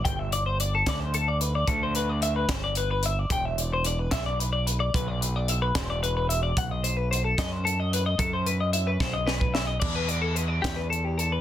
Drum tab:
CC |------------|------------|------------|------------|
HH |x-x-x-x-x-x-|x-x-x-x-x-x-|x-x-x-x-x-x-|x-x-x-x-x-x-|
SD |------o-----|------o-----|------o-----|------o-----|
BD |o-----o-----|o-----o-----|o-----o-----|o-----o-----|

CC |------------|------------|x-----------|
HH |x-x-x-x-x-x-|x-x-x-------|--x-x-x-x-x-|
SD |------o-----|------o-o-o-|------o-----|
BD |o-----o-----|o-----o--o--|o-----o-----|